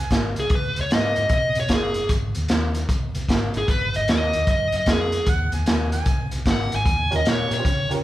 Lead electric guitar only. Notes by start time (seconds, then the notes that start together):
0.40 G#4
0.55 B4
0.81 C#5
0.94 D#5
1.33 D#5
1.60 C#5
1.74 G#4
3.58 G#4
3.71 B4
3.96 D#5
4.11 D#5
4.51 D#5
4.77 D#5
4.90 G#4
6.51 F#5
6.76 G#5
7.16 D#5
7.29 C#5
7.54 C#5